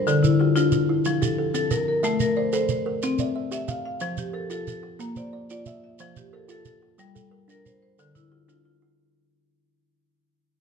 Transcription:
0.00 0.23 C5 medium
0.07 0.39 D3 medium
0.07 0.40 D3 medium
0.07 0.56 A4 medium
0.07 shekere medium
0.23 0.72 E4 medium
0.23 shekere medium
0.40 0.54 F4 medium
0.40 0.89 G4 medium
0.56 0.89 D4 medium
0.56 0.71 F4 medium
0.56 shekere medium
0.72 1.22 F4 medium
0.72 shekere medium
0.89 1.22 E4 medium
1.05 1.38 F3 medium
1.05 shekere medium
1.22 1.71 G4 medium
1.22 1.53 A4 medium
1.22 shekere medium
1.38 1.88 A4 medium
1.54 1.87 C4 medium
1.54 1.87 A4 medium
1.54 shekere medium
1.71 2.20 A#4 medium
1.71 1.87 A#4 medium
1.71 shekere medium
1.88 2.19 A#4 medium
2.03 2.37 A3 medium
2.03 2.53 E5 medium
2.03 shekere medium
2.20 2.70 A#4 medium
2.20 shekere medium
2.37 2.52 C5 medium
2.37 2.86 D5 medium
2.53 2.86 A4 medium
2.53 2.69 C5 medium
2.53 shekere medium
2.69 3.20 C5 medium
2.69 shekere medium
2.86 3.19 A#4 medium
3.02 3.36 C4 medium
3.02 shekere soft
3.19 3.69 D5 medium
3.19 3.52 E5 medium
3.19 shekere medium
3.36 3.85 E5 medium
3.51 3.85 G4 medium
3.51 3.86 E5 medium
3.51 shekere medium
3.68 4.18 F5 medium
3.68 3.84 F5 medium
3.68 shekere medium
3.85 4.18 F5 medium
4.00 4.34 F3 medium
4.00 4.35 F3 medium
4.00 4.51 C5 medium
4.00 shekere medium
4.17 4.68 G4 medium
4.17 shekere medium
4.33 4.50 A4 medium
4.33 4.84 A#4 medium
4.50 4.84 F4 medium
4.50 4.67 A4 medium
4.50 shekere soft
4.67 5.17 A4 medium
4.67 shekere medium
4.83 5.17 G4 medium
4.99 5.33 A#3 medium
4.99 5.34 A#3 medium
4.99 shekere soft
5.16 5.67 C5 medium
5.16 5.49 D5 medium
5.16 shekere medium
5.33 5.83 D5 medium
5.50 5.84 F4 medium
5.50 5.83 D5 medium
5.50 shekere medium
5.66 5.83 E5 medium
5.66 6.17 E5 medium
5.66 shekere medium
5.84 6.17 E5 medium
5.99 6.33 F3 medium
5.99 6.50 C5 medium
5.99 shekere medium
6.16 6.67 G4 medium
6.16 shekere medium
6.33 6.49 A4 medium
6.33 6.83 A#4 medium
6.48 6.82 F4 medium
6.48 6.65 A4 medium
6.48 shekere medium
6.65 7.16 A4 medium
6.65 shekere medium
6.82 7.16 G4 medium
6.98 7.32 G3 medium
6.98 shekere medium
7.15 7.65 A4 medium
7.15 shekere medium
7.31 7.81 A#4 medium
7.48 7.81 D4 medium
7.48 7.83 A#4 medium
7.48 shekere medium
7.66 7.81 C5 medium
7.66 shekere medium
7.82 8.15 C5 medium
7.99 8.32 D3 medium
7.99 8.48 A4 medium
7.99 shekere medium
8.15 8.65 E4 medium
8.15 shekere medium
8.32 8.47 F4 medium
8.32 8.81 G4 medium
8.48 8.81 D4 medium
8.48 8.64 F4 medium
8.48 shekere medium
8.65 9.15 F4 medium
8.82 9.15 E4 medium

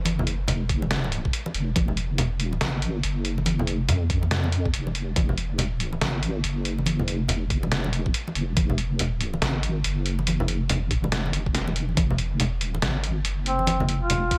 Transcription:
0.00 0.47 F#1 medium
0.05 closed hi-hat medium
0.05 high conga medium
0.19 low conga medium
0.27 closed hi-hat soft
0.48 1.32 F1 medium
0.48 closed hi-hat medium
0.48 low conga medium
0.69 kick medium
0.69 closed hi-hat medium
0.82 muted conga medium
0.91 snare loud
0.91 closed hi-hat medium
1.04 muted conga soft
1.12 closed hi-hat medium
1.25 kick medium
1.33 closed hi-hat medium
1.46 muted conga medium
1.54 1.75 F1 loud
1.54 closed hi-hat soft
1.76 2.35 F1 loud
1.76 kick loud
1.76 closed hi-hat medium
1.76 high conga medium
1.88 low conga medium
1.97 closed hi-hat soft
2.18 closed hi-hat medium
2.18 low conga medium
2.35 2.60 E1 loud
2.40 closed hi-hat soft
2.53 muted conga medium
2.61 3.02 G#1 medium
2.61 snare loud
2.61 closed hi-hat medium
2.82 closed hi-hat medium
3.03 3.87 F#1 medium
3.03 closed hi-hat medium
3.25 closed hi-hat soft
3.38 muted conga medium
3.46 closed hi-hat medium
3.46 high conga medium
3.59 low conga medium
3.67 closed hi-hat soft
3.89 4.72 F2 medium
3.89 closed hi-hat medium
3.89 low conga medium
4.10 kick medium
4.10 closed hi-hat soft
4.23 muted conga medium
4.31 snare loud
4.31 closed hi-hat medium
4.44 muted conga medium
4.52 closed hi-hat soft
4.66 kick medium
4.74 5.15 F1 medium
4.74 closed hi-hat medium
4.87 muted conga medium
4.95 closed hi-hat soft
5.16 6.00 F1 loud
5.16 kick loud
5.16 closed hi-hat medium
5.16 high conga medium
5.29 low conga medium
5.38 closed hi-hat soft
5.58 closed hi-hat medium
5.58 low conga medium
5.80 closed hi-hat soft
5.93 muted conga medium
6.01 6.43 G#1 medium
6.01 snare loud
6.01 closed hi-hat medium
6.23 closed hi-hat soft
6.44 7.28 F#1 medium
6.44 closed hi-hat medium
6.65 closed hi-hat soft
6.78 muted conga soft
6.86 closed hi-hat medium
6.86 high conga medium
6.99 low conga medium
7.08 closed hi-hat medium
7.28 7.88 F1 medium
7.28 closed hi-hat medium
7.28 low conga medium
7.50 kick medium
7.50 closed hi-hat medium
7.63 muted conga medium
7.72 snare loud
7.72 closed hi-hat medium
7.84 8.13 E1 medium
7.84 muted conga medium
7.93 closed hi-hat medium
8.06 kick medium
8.14 closed hi-hat medium
8.28 muted conga medium
8.35 8.55 F1 loud
8.35 closed hi-hat soft
8.57 9.41 F1 loud
8.57 kick loud
8.57 closed hi-hat medium
8.57 high conga medium
8.70 low conga medium
8.78 closed hi-hat medium
8.99 closed hi-hat medium
8.99 low conga medium
9.21 closed hi-hat medium
9.34 muted conga medium
9.42 9.83 G#1 medium
9.42 snare loud
9.42 closed hi-hat medium
9.63 closed hi-hat medium
9.84 10.68 F#1 medium
9.84 closed hi-hat medium
10.06 closed hi-hat medium
10.19 muted conga medium
10.27 closed hi-hat medium
10.27 high conga medium
10.40 low conga medium
10.48 closed hi-hat medium
10.48 muted conga soft
10.69 11.32 F1 medium
10.69 closed hi-hat medium
10.69 low conga medium
10.91 kick medium
10.91 closed hi-hat medium
11.04 muted conga medium
11.12 snare loud
11.12 closed hi-hat medium
11.26 muted conga medium
11.33 11.96 F1 loud
11.33 closed hi-hat medium
11.46 kick medium
11.55 snare medium
11.55 closed hi-hat medium
11.68 muted conga medium
11.76 closed hi-hat medium
11.89 high conga medium
11.97 12.56 F1 loud
11.97 kick loud
11.97 closed hi-hat medium
11.97 high conga loud
12.11 low conga loud
12.18 closed hi-hat medium
12.40 closed hi-hat medium
12.40 low conga medium
12.56 12.81 E1 loud
12.61 closed hi-hat medium
12.75 muted conga medium
12.82 13.24 G#1 medium
12.82 snare loud
12.82 closed hi-hat medium
13.04 closed hi-hat medium
13.25 14.09 F#1 medium
13.25 closed hi-hat medium
13.46 13.81 C4 medium
13.46 closed hi-hat medium
13.59 muted conga soft
13.67 closed hi-hat medium
13.67 high conga medium
13.80 low conga medium
13.89 closed hi-hat medium
14.02 14.38 F4 medium
14.10 14.38 F1 loud
14.10 closed hi-hat medium
14.10 low conga medium
14.31 kick medium
14.31 closed hi-hat medium

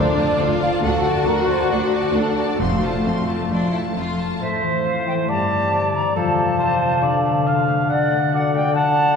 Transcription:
0.00 0.33 D2 soft
0.00 0.34 D2 soft
0.00 0.82 D3 soft
0.00 0.18 A3 soft
0.00 0.17 D4 soft
0.00 0.40 D4 soft
0.00 0.61 F4 soft
0.00 0.17 A4 soft
0.00 0.39 A4 soft
0.00 0.61 D5 medium
0.00 0.18 F5 soft
0.19 1.04 A3 soft
0.19 0.41 F4 soft
0.19 0.41 D5 soft
0.19 0.41 A5 soft
0.40 0.77 D2 soft
0.40 0.62 D4 soft
0.40 0.83 F4 soft
0.40 1.26 A4 soft
0.40 0.62 A4 soft
0.40 0.63 F5 soft
0.62 0.84 F4 soft
0.62 0.86 F4 soft
0.62 0.84 D5 soft
0.62 0.72 F5 medium
0.62 0.84 A5 soft
0.83 1.20 D2 soft
0.83 2.62 D3 soft
0.83 1.04 D4 soft
0.83 2.15 F#4 medium
0.83 1.29 A4 medium
0.83 1.04 A4 soft
0.83 1.04 F#5 soft
1.05 1.91 A3 soft
1.05 1.28 F#4 soft
1.05 1.28 D5 soft
1.05 1.27 A5 soft
1.27 1.64 D2 soft
1.27 1.49 D4 soft
1.27 2.13 A4 soft
1.27 1.49 A4 soft
1.27 1.49 A#4 soft
1.27 1.49 F#5 soft
1.49 2.36 F#4 soft
1.49 1.71 F#4 soft
1.49 1.70 C5 soft
1.49 1.71 D5 soft
1.49 1.71 A5 soft
1.70 2.08 D2 soft
1.70 2.62 D4 soft
1.70 1.92 D4 soft
1.70 1.91 A4 soft
1.70 2.14 D5 soft
1.70 1.91 F#5 soft
1.92 3.49 A3 soft
1.92 2.16 F#4 soft
1.92 2.16 D5 soft
1.92 2.15 A5 soft
2.14 2.53 D2 soft
2.14 2.61 D4 soft
2.14 2.38 D4 soft
2.14 3.04 A4 soft
2.14 2.60 A4 soft
2.14 2.38 A4 soft
2.14 2.38 F#5 soft
2.37 2.62 F#4 soft
2.37 2.61 F#4 soft
2.37 2.61 D5 soft
2.37 2.61 A5 soft
2.60 2.98 F1 soft
2.60 2.98 F2 soft
2.60 4.43 F3 soft
2.60 4.16 A3 soft
2.60 2.82 C4 soft
2.60 3.94 F4 soft
2.60 2.82 A4 soft
2.60 2.82 C6 soft
2.83 3.27 F4 soft
2.83 3.07 F4 soft
2.83 3.07 C5 soft
2.83 3.07 A5 soft
3.05 3.44 F2 soft
3.05 3.49 C4 soft
3.05 3.95 A4 soft
3.05 3.30 C6 soft
3.28 3.72 F4 soft
3.28 3.52 A5 soft
3.51 3.89 F2 soft
3.51 7.04 A3 soft
3.51 3.74 D4 soft
3.51 3.74 C6 soft
3.73 3.81 E4 soft
3.73 4.17 F4 soft
3.73 3.97 A5 soft
3.96 4.34 F2 soft
3.96 4.40 F4 soft
3.96 7.87 A4 soft
3.96 4.20 C6 soft
4.18 4.43 F4 soft
4.18 4.42 A5 soft
4.40 5.30 A2 soft
4.40 5.25 A3 soft
4.40 5.30 C5 soft
4.40 4.87 E5 medium
4.62 5.06 E3 soft
4.84 5.30 C4 soft
4.84 5.06 F5 medium
5.07 5.31 E3 soft
5.07 5.13 G5 medium
5.28 6.18 G2 soft
5.28 6.17 G3 soft
5.28 5.71 D5 soft
5.28 6.16 D5 soft
5.28 5.96 A5 medium
5.51 5.93 D3 soft
5.72 6.18 D4 soft
5.72 6.15 D5 soft
5.94 6.18 D3 soft
5.94 6.18 A#5 medium
6.16 7.05 F2 soft
6.16 7.01 F3 medium
6.16 6.58 A4 soft
6.16 7.86 F5 soft
6.16 7.68 A5 medium
6.38 6.81 C3 soft
6.59 7.46 F4 soft
6.59 7.04 C5 soft
6.82 7.05 C3 soft
7.03 9.16 D3 soft
7.03 7.89 D3 soft
7.03 7.49 D5 medium
7.25 7.67 A3 soft
7.47 7.92 F4 soft
7.47 7.89 F5 soft
7.68 8.10 A3 soft
7.89 8.73 D3 soft
7.89 8.29 D5 medium
7.89 8.32 F#5 medium
7.89 9.16 F#5 soft
8.11 8.53 A3 soft
8.32 9.16 F#4 soft
8.32 8.75 D5 soft
8.32 8.53 F#5 medium
8.54 9.16 A3 soft
8.54 8.74 G5 medium
8.74 9.16 D3 soft
8.74 9.16 F#5 medium
8.74 9.16 A5 medium
8.96 9.16 D4 soft

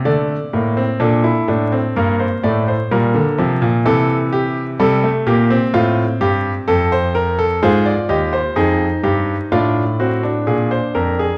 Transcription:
0.05 0.35 D3 medium
0.05 0.35 A3 medium
0.05 0.98 D5 medium
0.53 0.83 A2 medium
0.53 0.76 A#3 medium
0.77 1.00 C4 medium
1.00 1.30 A#2 medium
1.00 1.23 D4 medium
1.00 1.93 A4 medium
1.24 1.47 E4 medium
1.48 1.78 A2 medium
1.48 1.71 D4 medium
1.72 1.95 C4 medium
1.96 2.26 G2 medium
1.96 2.26 A#3 medium
1.96 2.19 A#4 medium
2.19 2.43 C5 medium
2.43 2.73 A2 medium
2.43 2.73 A3 medium
2.43 2.66 D5 medium
2.68 2.90 C5 medium
2.91 3.14 A#2 medium
2.91 3.20 G3 medium
2.91 3.83 A#4 medium
3.14 3.37 D3 medium
3.38 3.61 C3 medium
3.38 3.68 F3 medium
3.62 3.85 A#2 medium
3.85 4.77 C3 medium
3.85 4.77 E3 medium
3.85 4.15 A4 medium
4.32 4.62 G4 medium
4.79 5.09 C3 medium
4.79 5.02 G3 medium
4.79 5.09 A4 medium
5.04 5.26 A3 medium
5.27 5.56 A#2 medium
5.27 5.50 A#3 medium
5.27 5.56 G4 medium
5.51 7.59 C4 medium
5.74 6.03 A2 medium
5.74 6.03 F4 medium
6.21 6.50 G2 medium
6.21 6.50 G4 medium
6.68 7.60 F2 medium
6.68 6.91 A4 medium
6.92 7.15 C5 medium
7.15 7.38 A#4 medium
7.39 7.62 A4 medium
7.62 7.92 G#2 medium
7.62 8.55 F4 medium
7.62 7.92 G#4 medium
7.62 7.86 C5 medium
7.85 8.09 D5 medium
8.09 8.39 D#2 medium
8.09 8.39 G4 medium
8.09 8.32 D#5 medium
8.33 9.49 C5 medium
8.56 8.86 F2 medium
8.56 9.49 D#4 medium
8.56 8.86 G#4 medium
9.04 9.34 G2 medium
9.04 9.34 G4 medium
9.52 10.45 A2 medium
9.52 9.82 D4 medium
9.52 9.82 F4 medium
9.52 11.38 D5 medium
9.99 10.23 C4 medium
9.99 10.30 F#4 medium
10.23 11.38 D4 medium
10.47 10.77 A#2 medium
10.47 10.71 G#4 medium
10.71 10.95 C5 medium
10.95 11.25 F2 medium
10.95 11.19 A#4 medium
11.19 11.38 G#4 medium

